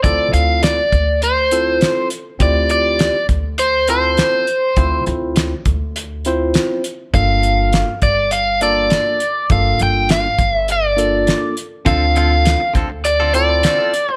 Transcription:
0.03 0.27 D2 loud
0.03 0.80 C4 medium
0.03 0.80 E4 medium
0.03 0.80 F4 medium
0.03 0.80 A4 medium
0.03 0.31 D5 medium
0.03 kick medium
0.03 closed hi-hat medium
0.33 0.78 D2 medium
0.33 0.63 F5 medium
0.33 closed hi-hat medium
0.63 1.23 D5 medium
0.63 snare loud
0.63 closed hi-hat medium
0.92 1.83 D2 medium
0.92 kick medium
0.92 closed hi-hat medium
1.22 2.08 C5 medium
1.22 closed hi-hat medium
1.51 2.08 C4 medium
1.51 2.09 E4 medium
1.51 2.09 F4 medium
1.51 2.09 A4 medium
1.51 closed hi-hat medium
1.81 snare loud
1.81 closed hi-hat medium
2.10 closed hi-hat medium
2.39 3.08 D2 loud
2.39 3.16 C4 medium
2.39 3.16 E4 medium
2.39 3.16 F4 medium
2.39 3.16 G4 medium
2.39 2.70 D5 loud
2.39 kick medium
2.39 closed hi-hat medium
2.69 3.26 D5 medium
2.69 closed hi-hat medium
2.99 snare loud
2.99 closed hi-hat medium
3.29 4.19 D2 medium
3.29 kick medium
3.29 closed hi-hat medium
3.58 3.89 C5 loud
3.58 closed hi-hat medium
3.87 4.45 C4 medium
3.87 4.45 E4 medium
3.87 4.45 F4 medium
3.87 4.46 A4 medium
3.87 5.04 C5 loud
3.87 closed hi-hat medium
4.17 snare loud
4.17 closed hi-hat medium
4.47 closed hi-hat medium
4.76 5.00 D2 medium
4.76 5.53 C4 medium
4.76 5.53 E4 medium
4.76 5.53 F4 medium
4.76 5.53 C5 medium
4.76 kick medium
4.76 closed hi-hat medium
5.06 5.52 D2 medium
5.06 closed hi-hat soft
5.36 snare loud
5.36 closed hi-hat medium
5.65 6.56 D2 medium
5.65 kick medium
5.65 closed hi-hat medium
5.96 closed hi-hat medium
6.25 6.82 C4 medium
6.25 6.82 E4 medium
6.25 6.82 F4 medium
6.25 6.83 C5 medium
6.25 closed hi-hat medium
6.54 snare loud
6.54 closed hi-hat medium
6.84 closed hi-hat medium
7.13 7.82 G1 medium
7.13 7.89 A#3 medium
7.13 7.89 D4 medium
7.13 7.90 F4 medium
7.13 7.90 A4 medium
7.13 7.99 F5 medium
7.13 kick medium
7.13 closed hi-hat medium
7.43 closed hi-hat medium
7.73 snare loud
7.73 closed hi-hat medium
8.02 8.92 G1 medium
8.02 8.32 D5 medium
8.02 kick medium
8.02 closed hi-hat medium
8.31 8.60 F5 medium
8.31 closed hi-hat medium
8.61 9.18 A#3 medium
8.61 9.18 D4 medium
8.61 9.18 F4 medium
8.61 9.18 A4 medium
8.61 9.52 D5 medium
8.61 closed hi-hat medium
8.90 snare medium
8.90 closed hi-hat medium
9.20 closed hi-hat medium
9.50 9.73 G1 medium
9.50 10.26 A#3 medium
9.50 10.26 D4 medium
9.50 10.26 F4 medium
9.50 10.27 A4 medium
9.50 9.82 F5 loud
9.50 kick loud
9.50 closed hi-hat medium
9.79 10.25 G1 medium
9.79 10.11 G5 loud
9.79 closed hi-hat medium
10.09 10.55 F5 medium
10.09 snare loud
10.09 closed hi-hat medium
10.38 11.29 G1 medium
10.38 kick medium
10.38 closed hi-hat medium
10.55 10.71 E5 medium
10.68 11.55 D5 medium
10.68 closed hi-hat medium
10.97 11.54 A#3 medium
10.97 11.54 D4 medium
10.97 11.54 F4 medium
10.97 11.55 A4 medium
10.97 closed hi-hat medium
11.27 snare medium
11.27 closed hi-hat medium
11.57 closed hi-hat medium
11.85 12.54 D2 loud
11.85 12.04 D3 medium
11.85 12.62 C4 medium
11.85 12.05 C4 medium
11.85 12.62 D4 medium
11.85 12.62 F4 medium
11.85 12.05 F4 medium
11.85 12.62 A4 medium
11.85 12.05 A4 medium
11.85 12.17 F5 loud
11.85 kick loud
11.85 closed hi-hat medium
12.15 12.34 D3 medium
12.15 12.34 C4 medium
12.15 12.35 F4 medium
12.15 12.35 A4 medium
12.15 12.72 F5 medium
12.15 closed hi-hat medium
12.45 muted clean electric guitar stroke soft
12.45 snare loud
12.45 closed hi-hat medium
12.60 muted clean electric guitar stroke soft
12.74 13.65 D2 medium
12.74 12.90 D3 medium
12.74 12.90 C4 medium
12.74 12.90 F4 medium
12.74 12.89 A4 medium
12.74 kick medium
12.74 closed hi-hat medium
12.90 muted clean electric guitar stroke soft
13.04 13.34 D5 loud
13.04 muted clean electric guitar stroke soft
13.04 closed hi-hat medium
13.20 13.33 D3 soft
13.20 13.34 C4 medium
13.20 13.34 F4 medium
13.20 13.34 A4 medium
13.34 13.91 C4 medium
13.34 13.91 E4 medium
13.34 13.91 F4 medium
13.34 13.92 A4 medium
13.34 14.13 D5 loud
13.34 muted clean electric guitar stroke soft
13.34 closed hi-hat medium
13.49 muted clean electric guitar stroke soft
13.63 13.79 D3 medium
13.63 13.80 C4 medium
13.63 13.79 F4 medium
13.63 13.77 A4 medium
13.63 snare medium
13.63 closed hi-hat medium
13.79 13.92 C4 soft
13.79 13.93 F4 medium
13.79 13.93 A4 soft
13.93 muted clean electric guitar stroke soft
13.93 closed hi-hat medium
14.09 muted clean electric guitar stroke medium
14.13 14.16 C5 loud

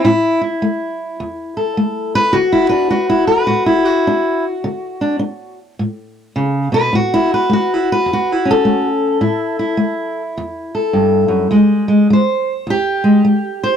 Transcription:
0.04 0.58 A2 medium
0.04 0.40 E4 medium
0.41 2.32 E4 soft
0.62 1.15 A3 medium
1.20 1.73 E2 medium
1.57 2.15 A4 soft
1.77 2.30 A3 medium
2.15 2.35 B4 loud
2.33 2.87 D3 medium
2.33 2.89 F#4 loud
2.52 2.69 E4 medium
2.69 2.91 D4 soft
2.69 3.09 B4 medium
2.90 3.45 D4 medium
2.90 3.46 F#4 medium
3.09 3.27 E4 medium
3.27 3.66 B4 medium
3.47 4.02 A2 medium
3.47 3.83 F#4 medium
3.66 4.44 E4 medium
3.84 5.58 F#4 medium
4.07 4.60 D4 medium
4.64 5.17 D3 medium
5.01 5.18 D4 soft
5.19 5.74 D4 medium
5.79 6.32 A2 medium
6.36 6.72 C#3 medium
6.72 6.92 B2 medium
6.72 6.93 B4 loud
6.93 7.46 A2 medium
6.93 7.52 F#4 medium
7.14 7.32 E4 medium
7.34 7.74 B4 medium
7.49 8.03 A3 medium
7.49 8.09 F#4 medium
7.74 7.91 E4 medium
7.92 8.32 B4 medium
8.06 8.60 E2 medium
8.13 8.87 F#4 medium
8.32 8.49 E4 medium
8.45 9.21 C#4 soft
8.51 10.21 A4 medium
8.65 9.18 A3 medium
9.21 9.75 A2 medium
9.21 9.59 E4 soft
9.59 11.55 E4 soft
9.77 10.32 A3 medium
10.38 10.91 E2 medium
10.75 11.50 A4 soft
10.93 11.28 G2 medium
11.28 11.50 F#2 medium
11.51 12.05 E2 medium
11.51 11.88 G#3 soft
11.55 12.11 G4 medium
11.88 12.10 G#3 soft
12.10 12.63 G#3 medium
12.10 12.69 C5 medium
12.67 13.20 E2 medium
12.67 13.62 G4 medium
13.04 13.23 G#3 soft
13.25 13.77 G#3 medium
13.63 13.77 C5 medium

